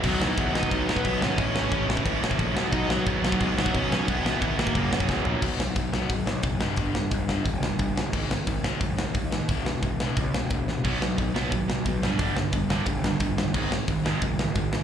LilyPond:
<<
  \new Staff \with { instrumentName = "Lead electric guitar" } { \time 4/4 \key b \major \tempo 4 = 178 <fis fis'>8. <e e'>8. <dis' dis''>4~ <dis' dis''>16 <b b'>8. <cis' cis''>8~ | <cis' cis''>4. r2 r8 | <dis' dis''>8 <fis fis'>4. <gis gis'>8 <fis fis'>8 <cis' cis''>4 | <b b'>4. <ais ais'>4 r4. |
r1 | r1 | r1 | r1 |
r1 | r1 | r1 | }
  \new Staff \with { instrumentName = "Overdriven electric guitar" } { \clef bass \time 4/4 \key b \major <b, dis fis b dis'>8 <b, dis fis b dis'>8 <b, dis fis b dis'>8 <b, dis fis b dis'>8 <b, dis fis b dis'>8 <b, dis fis b dis'>8 <b, dis fis b dis'>8 <b, dis fis b dis'>8 | <a, e a cis' e'>8 <a, e a cis' e'>8 <a, e a cis' e'>8 <a, e a cis' e'>8 <a, e a cis' e'>8 <a, e a cis' e'>8 <a, e a cis' e'>8 <b, dis fis b dis'>8 | <b, dis fis b dis'>8 <b, dis fis b dis'>8 <b, dis fis b dis'>8 <b, dis fis b dis'>8 <b, dis fis b dis'>8 <b, dis fis b dis'>8 <b, dis fis b dis'>8 <b, dis fis b dis'>8 | <e gis b e'>8 <e gis b e'>8 <e gis b e'>8 <e gis b e'>8 <fis, cis fis ais cis'>8 <fis, cis fis ais cis'>8 <fis, cis fis ais cis'>8 <fis, cis fis ais cis'>8 |
r1 | r1 | r1 | r1 |
<b, fis b>8 <b, fis>8 <b, fis>8 <b, fis b>8 <b, fis>8 <b, fis>8 <b, fis>8 <g, d g>8 | <g, d g>8 <g, d>8 <g, d>8 <g, d g>8 <g, d>8 <g, d>8 <g, d>8 <g, d>8 | <gis, dis gis>8 <gis, dis>8 <gis, dis>8 <gis, dis gis>8 <gis, dis>8 <gis, dis>8 <gis, dis>8 <gis, dis>8 | }
  \new Staff \with { instrumentName = "Distorted electric guitar" } { \clef bass \time 4/4 \key b \major <b, fis b>8 <b, fis b>8 <b, fis b>8 <b, fis b>8 <b, fis b>8 <b, fis b>8 <b, fis b>8 <b, fis b>8 | <a, e a>8 <a, e a>8 <a, e a>8 <a, e a>8 <a, e a>8 <a, e a>8 <a, e a>8 <b, fis b>8 | <b, fis b>8 <b, fis b>8 <b, fis b>8 <b, fis b>8 <b, fis b>8 <b, fis b>8 <b, fis b>8 <b, fis b>8 | <e, b, e>8 <e, b, e>8 <e, b, e>8 <e, b, e>8 <fis, cis fis>8 <fis, cis fis>8 <fis, cis fis>8 <fis, cis fis>8 |
<b, fis b>8 <b, fis>8 <b, fis>8 <b, fis b>8 <b, fis>8 <b, fis>8 <b, fis>8 <g, d g>8 | <g, d g>8 <g, d>8 <g, d>8 <g, d g>8 <g, d>8 <g, d>8 <g, d>8 <g, d>8 | <gis, dis gis>8 <gis, dis>8 <gis, dis>8 <gis, dis gis>8 <gis, dis>8 <gis, dis>8 <gis, dis>8 <gis, dis>8 | <e, b, e>8 <e, b,>8 <e, b,>8 <e, b, e>8 <e, b,>8 <e, b,>8 <e, b,>8 <e, b,>8 |
<b, fis b>8 <b, fis>8 <b, fis>8 <b, fis b>8 <b, fis>8 <b, fis>8 <b, fis>8 <g, d g>8 | <g, d g>8 <g, d>8 <g, d>8 <g, d g>8 <g, d>8 <g, d>8 <g, d>8 <g, d>8 | <gis, dis gis>8 <gis, dis>8 <gis, dis>8 <gis, dis gis>8 <gis, dis>8 <gis, dis>8 <gis, dis>8 <gis, dis>8 | }
  \new Staff \with { instrumentName = "Picked electric bass" } { \clef bass \time 4/4 \key b \major b,,8 b,,8 e,8 b,,8 b,,4 b,,8 gis,,8 | a,,8 a,,8 a,,4 a,,8 a,,8 ais,,8 b,,8 | b,,8 b,,8 e,8 b,,8 b,,4 b,,8 b,,8 | e,,8 e,,8 gis,,4 fis,,8 fis,,8 e,8 ais,,8 |
b,,8 b,,8 b,,8 b,,8 gis,,8 b,,8 fis,,8 g,,8 | g,,4 g,,4 e,,8 g,,8 g,,8 g,,8 | gis,,8 gis,,8 gis,,8 gis,,8 fis,,8 gis,,8 dis,4 | e,,4 e,,4 cis,8 e,,8 e,,8 e,,8 |
b,,8 b,,8 b,,8 b,,8 gis,,8 b,,8 b,,8 g,,8 | g,,4 g,,4 e,,8 g,,8 g,,8 g,,8 | gis,,8 gis,,8 gis,,8 gis,,8 fis,,8 gis,,8 gis,,4 | }
  \new DrumStaff \with { instrumentName = "Drums" } \drummode { \time 4/4 <cymc bd>8 sn8 <cymc bd>8 sn16 bd16 <cymc bd>8 sn16 bd16 <cymc bd>8 sn8 | <cymc bd>8 sn8 <cymc bd>8 sn16 bd16 <cymc bd>8 sn16 bd16 <cymc bd>8 sn8 | <cymc bd>8 sn8 <cymc bd>8 sn16 bd16 <cymc bd>8 sn16 bd16 <cymc bd>8 sn8 | <cymc bd>8 sn8 <cymc bd>8 sn16 bd16 <cymc bd>8 sn16 bd16 <bd sn>8 tomfh8 |
<cymc bd>8 sn8 <hho bd>8 sn8 <hho bd>8 sn8 <hho bd>8 sn8 | <hho bd>8 sn8 <hho bd>8 sn8 <hho bd>8 sn8 <hho bd>8 sn8 | <cymc bd>8 sn8 <hho bd>8 sn8 <hho bd>8 sn8 <hho bd>8 sn8 | <hho bd>8 sn8 <hho bd>8 sn8 <hho bd>8 sn8 <hho bd>8 sn8 |
<cymc bd>8 sn8 <hho bd>8 sn8 <hho bd>8 sn8 <hho bd>8 sn8 | <hho bd>8 sn8 <hho bd>8 sn8 <hho bd>8 sn8 <hho bd>8 sn8 | <cymc bd>8 sn8 <hho bd>8 sn8 <hho bd>8 sn8 <hho bd>8 sn8 | }
>>